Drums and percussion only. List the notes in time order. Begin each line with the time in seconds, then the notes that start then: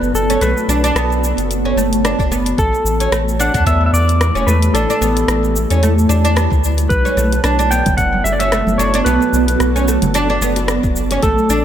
0.03 shaker
0.15 shaker
0.30 closed hi-hat, shaker
0.41 closed hi-hat, shaker
0.57 shaker
0.70 shaker
0.84 closed hi-hat, shaker
0.96 cross-stick, closed hi-hat, shaker
1.12 shaker
1.24 shaker
1.38 closed hi-hat, shaker
1.51 closed hi-hat, shaker
1.78 shaker
1.93 closed hi-hat, shaker
2.05 cross-stick, closed hi-hat, shaker
2.19 kick, shaker
2.32 shaker
2.46 closed hi-hat, shaker
2.58 kick, closed hi-hat, shaker
2.74 shaker
2.86 shaker
3.00 closed hi-hat, shaker
3.12 cross-stick, closed hi-hat, shaker
3.29 shaker
3.40 shaker
3.54 kick, closed hi-hat, shaker
3.66 kick, closed hi-hat, shaker
3.95 shaker
4.09 closed hi-hat, shaker
4.21 cross-stick, closed hi-hat, shaker
4.37 shaker
4.48 shaker
4.62 closed hi-hat, shaker
4.75 closed hi-hat, shaker
4.90 shaker
5.02 shaker
5.17 closed hi-hat, shaker
5.28 cross-stick, closed hi-hat, shaker
5.44 shaker
5.56 shaker
5.70 closed hi-hat, shaker
5.83 closed hi-hat, shaker
5.99 shaker
6.10 shaker
6.25 closed hi-hat, shaker
6.37 cross-stick, closed hi-hat, shaker
6.51 kick, shaker
6.64 shaker
6.78 closed hi-hat, shaker
6.90 kick, closed hi-hat, shaker
7.05 high conga, shaker
7.18 shaker
7.32 closed hi-hat, high bongo, shaker
7.44 cross-stick, closed hi-hat, shaker
7.60 shaker
7.72 shaker
7.86 kick, closed hi-hat, high conga, low conga, shaker
7.98 kick, closed hi-hat, shaker
8.14 high conga
8.26 high bongo, shaker
8.40 closed hi-hat, shaker
8.52 cross-stick, closed hi-hat, shaker
8.67 high conga, shaker
8.80 shaker
8.94 closed hi-hat, high bongo, shaker
9.06 closed hi-hat, shaker
9.22 shaker
9.34 shaker
9.48 closed hi-hat, high bongo, shaker
9.60 cross-stick, closed hi-hat, shaker
9.76 shaker
9.88 shaker
10.02 closed hi-hat, high conga, low conga, shaker
10.14 closed hi-hat, shaker
10.30 high bongo
10.42 shaker
10.56 closed hi-hat, high bongo, shaker
10.68 cross-stick, closed hi-hat, shaker
10.84 kick, shaker
10.96 shaker
11.11 closed hi-hat, high bongo, shaker
11.23 kick, closed hi-hat, shaker
11.38 high conga, shaker
11.50 shaker